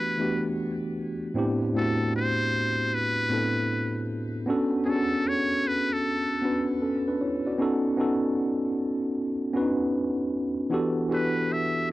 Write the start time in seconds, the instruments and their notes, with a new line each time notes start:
Already playing: tine electric piano E3 A3 B3 D4 F#4 G4, muted trumpet B4
0.18 tine electric piano E3 A3 B3 D4 F#4 G4
1.34 tine electric piano A2 B3 C4 D4 E4 G4
1.74 tine electric piano A2 A3 C4 D4 E4 F#4, muted trumpet A4
2.16 muted trumpet C5
2.94 muted trumpet B4
3.29 tine electric piano A2 B3 C4 D4 E4 A4
4.46 tine electric piano B3 C#4 D4 F#4 A4
4.85 tine electric piano B3 C#4 D4 F#4, muted trumpet G#4
4.89 tine electric piano G#4, muted trumpet A4
4.96 tine electric piano A4
5.28 muted trumpet C#5
5.68 muted trumpet B4
5.93 muted trumpet A4
6.41 tine electric piano B3 C#4 D4 F#4 B4
6.82 tine electric piano C#4 A4
7.08 tine electric piano D4 B4
7.21 tine electric piano E4 C#5
7.46 tine electric piano F#4 D5
7.58 tine electric piano B3 C#4 D#4 F#4 A4
7.97 tine electric piano B3 C#4 D#4 F#4 A4
9.53 tine electric piano B3 C#4 D4 F#4 B4
9.61 tine electric piano D#4
10.70 tine electric piano E3 B3 D4 F#4 G4 A4
11.09 tine electric piano E3 B3 D4 F#4 G4 A4
11.14 muted trumpet B4
11.53 muted trumpet E5